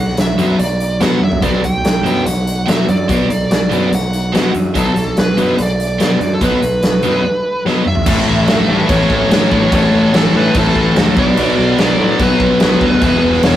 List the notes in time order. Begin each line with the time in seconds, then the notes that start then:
Already playing: B1 F#5
0.08 snare
0.17 B1 E5, snare, closed hi-hat
0.38 F#2 B2 F#3 B3, closed hi-hat
0.59 B1 D5, closed hi-hat
0.80 closed hi-hat
1.00 B2 F#3 B3 F#5, snare, closed hi-hat
1.21 F#2 E5, high tom
1.32 floor tom
1.42 B1 B2 F#3 B3 D5, kick, closed hi-hat
1.63 B1 G5, closed hi-hat
1.84 B1, snare, closed hi-hat
2.05 F#2 B2 F#3 B3, closed hi-hat
2.26 B1 F#5, closed hi-hat
2.47 closed hi-hat
2.67 B2 F#3 B3 E5, snare, closed hi-hat
2.89 F#2 D5, closed hi-hat
3.09 B1 B2 F#3 B3, kick, closed hi-hat
3.30 B1, closed hi-hat
3.51 B1 D5, snare, closed hi-hat
3.71 F#2 B2 F#3 B3, closed hi-hat
3.92 B1 F#5, closed hi-hat
4.13 closed hi-hat
4.33 B2 F#3 B3, snare, closed hi-hat
4.54 F#2, closed hi-hat
4.75 B1 B2 F#3 B3 A4, kick, closed hi-hat
4.96 B1, snare, closed hi-hat
5.17 B1 B4, snare, closed hi-hat
5.37 F#2 B2 F#3 B3, closed hi-hat
5.58 B1, closed hi-hat
5.62 D5
5.80 closed hi-hat
6.00 B2 F#3 B3 D5, snare, closed hi-hat
6.21 F#2, closed hi-hat
6.34 A4
6.41 B1 B2 F#3 B3 B4, kick, closed hi-hat
6.62 B1, closed hi-hat
6.83 B1, snare, closed hi-hat
7.03 F#2 B2 F#3 B3, closed hi-hat
7.65 B2 F#3 B3, snare
7.86 E5, mid tom
7.95 floor tom
8.06 A1 A2 E3 A3, kick, crash
8.28 A1
8.47 A1 A2 E3 A3, snare, crash
8.68 G2 A2 E3 A3
8.89 A1 A2 E3 A3 C#5, kick, crash
9.10 A1, kick
9.31 A1 A2 E3 A3, snare, crash
9.51 A1 A2 E3 A3, kick
9.72 A1 A2 E3 A3 C#5, kick, crash
9.92 A1
10.13 A1 A2 E3 A3 A4, snare, crash
10.33 A2 E3 A3 B4
10.55 A1 A2 E3 A3 A4, kick, crash
10.76 A1, kick
10.96 C#2 A2 E3 A3, snare, crash
11.17 B1 B2 F#3 B3 D5, kick
11.37 B1 B2 F#3 B3, crash
11.58 B1
11.78 B1 B2 F#3 B3, snare, crash
11.99 A2 B2 F#3 B3
12.19 B1 B2 F#3 B3 B4, kick, crash
12.40 B1, kick
12.60 B1 B2 F#3 B3, snare, crash
12.81 D2 B2 F#3 B3, kick
13.01 E1 E2 B2 E3 B4, kick, crash
13.23 E1
13.33 snare
13.43 E1 E2 B2 E3 C#5, snare, crash